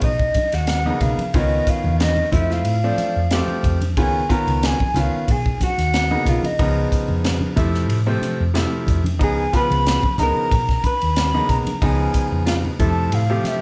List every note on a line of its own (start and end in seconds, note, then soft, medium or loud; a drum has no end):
0.01 0.27 B1 medium
0.01 0.54 D#4 medium
0.01 0.56 D#5 medium
0.01 kick medium
0.01 ride medium
0.20 kick medium
0.34 kick medium
0.34 hi-hat pedal medium
0.34 ride medium
0.34 high conga medium
0.52 0.90 D#2 medium
0.52 1.01 F#4 medium
0.52 1.03 F#5 loud
0.52 snare soft
0.52 ride medium
0.67 snare medium
0.67 ride medium
0.86 1.20 C#3 medium
0.86 1.20 A#3 medium
0.86 1.20 B3 medium
0.86 1.20 D#4 medium
0.86 high conga medium
1.00 1.14 B1 medium
1.00 1.33 F4 medium
1.00 1.38 F5 medium
1.00 kick medium
1.00 hi-hat pedal medium
1.00 ride medium
1.00 low conga medium
1.19 muted fingered electric bass stroke soft
1.19 ride medium
1.19 high conga medium
1.33 1.59 C#2 medium
1.33 2.25 D#3 medium
1.33 2.25 B3 medium
1.33 2.25 C#4 medium
1.33 1.67 D#4 medium
1.33 2.25 F4 medium
1.33 1.71 D#5 medium
1.33 kick loud
1.33 ride medium
1.67 2.00 F4 medium
1.67 2.00 F5 medium
1.67 kick medium
1.67 hi-hat pedal medium
1.67 ride medium
1.84 2.21 E2 medium
1.84 low conga medium
2.00 2.31 D#4 medium
2.00 2.31 D#5 medium
2.00 snare medium
2.00 ride medium
2.17 high conga medium
2.32 2.66 F2 medium
2.32 2.72 A3 medium
2.32 2.72 C4 medium
2.32 2.72 E4 medium
2.32 2.50 E4 medium
2.32 2.72 F4 medium
2.32 2.54 E5 medium
2.32 kick medium
2.32 hi-hat pedal medium
2.32 ride medium
2.32 high conga medium
2.32 low conga medium
2.50 3.64 F4 medium
2.50 3.65 F5 medium
2.50 snare soft
2.65 2.91 A2 medium
2.65 ride medium
2.84 3.17 F3 medium
2.84 3.17 A3 medium
2.84 3.17 C4 medium
2.84 3.17 D4 medium
2.98 hi-hat pedal medium
2.98 ride medium
2.98 high conga medium
3.16 3.41 F2 medium
3.31 3.78 F3 medium
3.31 3.78 A3 medium
3.31 3.78 C4 medium
3.31 3.78 G4 medium
3.31 snare medium
3.31 ride medium
3.48 high conga medium
3.63 3.97 F2 medium
3.63 kick medium
3.63 hi-hat pedal medium
3.63 ride medium
3.63 low conga medium
3.81 ride medium
3.81 high conga medium
3.97 4.22 C#2 loud
3.97 4.21 D#3 medium
3.97 4.20 B3 medium
3.97 4.20 C#4 medium
3.97 4.20 F4 medium
3.97 4.31 G#4 medium
3.97 4.33 G#5 medium
3.97 kick loud
3.97 ride medium
4.29 4.75 D#3 medium
4.29 4.75 B3 medium
4.29 4.75 C#4 medium
4.29 4.75 F4 medium
4.29 4.64 A#4 medium
4.29 4.68 A#5 medium
4.29 kick medium
4.29 hi-hat pedal medium
4.29 ride medium
4.47 4.72 C#2 medium
4.47 ride medium
4.47 low conga medium
4.63 4.98 G#4 medium
4.63 5.01 G#5 medium
4.63 snare loud
4.63 ride medium
4.80 kick medium
4.80 high conga medium
4.94 5.09 C#2 medium
4.94 5.28 D#3 medium
4.94 5.28 B3 medium
4.94 5.28 C#4 medium
4.94 5.28 F4 medium
4.94 5.31 F4 medium
4.94 hi-hat pedal medium
4.94 ride soft
4.94 high conga medium
4.94 low conga medium
5.00 5.33 F5 medium
5.13 muted fingered electric bass stroke soft
5.28 5.53 B1 medium
5.28 5.62 G#4 medium
5.28 5.63 G#5 medium
5.28 kick medium
5.28 ride medium
5.46 kick medium
5.60 6.24 F#4 medium
5.60 kick medium
5.60 snare soft
5.60 hi-hat pedal medium
5.60 ride medium
5.60 high conga medium
5.65 6.31 F#5 loud
5.78 6.14 D#2 medium
5.78 snare soft
5.78 ride medium
5.94 snare medium
5.94 ride medium
6.10 6.44 C#3 medium
6.10 6.45 A#3 medium
6.10 6.45 B3 medium
6.10 6.45 D#4 medium
6.10 high conga medium
6.25 6.40 B1 medium
6.25 6.46 F4 medium
6.25 6.47 F5 medium
6.25 kick medium
6.25 hi-hat pedal medium
6.25 ride medium
6.25 low conga medium
6.43 7.11 D#4 medium
6.43 7.10 D#5 medium
6.43 muted fingered electric bass stroke soft
6.43 ride medium
6.43 high conga medium
6.59 6.84 C#2 medium
6.59 7.49 C#3 medium
6.59 7.50 F3 medium
6.59 7.50 B3 medium
6.59 7.50 D#4 medium
6.59 kick medium
6.59 ride medium
6.92 kick medium
6.92 hi-hat pedal medium
6.92 ride medium
7.08 7.45 F2 medium
7.08 low conga medium
7.24 snare loud
7.24 ride medium
7.41 high conga medium
7.56 7.90 F2 medium
7.56 7.96 C3 medium
7.56 7.97 F3 medium
7.56 7.96 A3 medium
7.56 7.96 E4 medium
7.56 kick medium
7.56 hi-hat pedal medium
7.56 ride medium
7.56 high conga medium
7.56 low conga medium
7.75 snare soft
7.90 8.14 A2 medium
7.90 ride medium
8.07 8.41 C3 medium
8.07 8.41 F3 medium
8.07 8.41 A3 medium
8.07 8.41 C4 medium
8.21 hi-hat pedal medium
8.21 ride medium
8.21 high conga medium
8.40 8.65 F2 medium
8.54 9.00 C3 medium
8.54 9.00 F3 medium
8.54 9.01 A3 medium
8.54 9.01 E4 medium
8.54 snare medium
8.54 ride medium
8.87 9.21 F2 medium
8.87 kick medium
8.87 hi-hat pedal medium
8.87 ride medium
8.87 low conga medium
9.04 ride soft
9.04 high conga medium
9.19 9.45 C#2 medium
9.19 9.43 C#3 medium
9.19 9.43 F3 medium
9.19 9.43 B3 medium
9.19 9.43 D#4 medium
9.19 9.56 G#5 medium
9.19 kick medium
9.19 ride medium
9.24 9.53 G#4 medium
9.53 9.99 C#3 medium
9.53 9.99 F3 medium
9.53 9.99 B3 medium
9.53 9.99 F4 medium
9.53 10.18 B5 loud
9.53 kick medium
9.53 hi-hat pedal medium
9.53 ride medium
9.57 10.21 B4 medium
9.70 9.96 C#2 medium
9.70 ride medium
9.70 low conga medium
9.86 snare loud
9.86 ride medium
10.03 kick medium
10.03 high conga medium
10.18 10.32 C#2 medium
10.18 10.51 C#3 medium
10.18 10.51 F3 medium
10.18 10.51 B3 medium
10.18 10.52 D#4 medium
10.18 10.86 A#5 medium
10.18 hi-hat pedal medium
10.18 ride soft
10.18 high conga medium
10.18 low conga medium
10.23 10.82 A#4 medium
10.52 10.76 B1 medium
10.52 kick medium
10.52 ride medium
10.69 kick medium
10.69 snare soft
10.84 11.51 B4 medium
10.84 11.52 B5 loud
10.84 kick medium
10.84 hi-hat pedal medium
10.84 ride medium
10.84 high conga medium
11.01 11.38 D#2 medium
11.01 ride medium
11.16 snare medium
11.16 ride medium
11.34 11.68 C#3 medium
11.34 11.68 A#3 medium
11.34 11.68 B3 medium
11.34 11.68 D#4 medium
11.34 high conga medium
11.49 11.62 B1 medium
11.49 11.82 A#4 medium
11.49 11.85 A#5 medium
11.49 kick medium
11.49 hi-hat pedal medium
11.49 ride medium
11.49 low conga medium
11.67 muted fingered electric bass stroke soft
11.67 ride medium
11.67 high conga medium
11.82 12.07 C#2 medium
11.82 12.72 C#3 medium
11.82 12.72 F3 medium
11.82 12.72 B3 medium
11.82 12.72 D#4 medium
11.82 12.47 G#4 medium
11.82 12.48 G#5 medium
11.82 kick loud
11.82 ride medium
12.14 kick medium
12.14 hi-hat pedal medium
12.14 ride medium
12.32 12.68 F2 medium
12.32 low conga medium
12.46 12.55 F4 medium
12.46 12.55 F5 medium
12.46 snare medium
12.46 ride medium
12.65 high conga medium
12.79 13.13 F2 medium
12.79 13.20 C3 medium
12.79 13.20 F3 medium
12.79 13.20 A3 medium
12.79 13.20 E4 medium
12.79 13.13 A4 medium
12.79 13.16 A5 medium
12.79 kick medium
12.79 hi-hat pedal medium
12.79 ride medium
12.79 high conga medium
12.79 low conga medium
13.12 13.37 A2 medium
13.12 13.44 F4 medium
13.12 13.50 F5 medium
13.12 ride medium
13.30 13.62 C3 medium
13.30 13.62 F3 medium
13.30 13.62 A3 medium
13.30 13.62 G4 medium
13.44 13.62 E4 medium
13.44 13.62 E5 medium
13.44 snare soft
13.44 hi-hat pedal medium
13.44 ride medium
13.44 high conga medium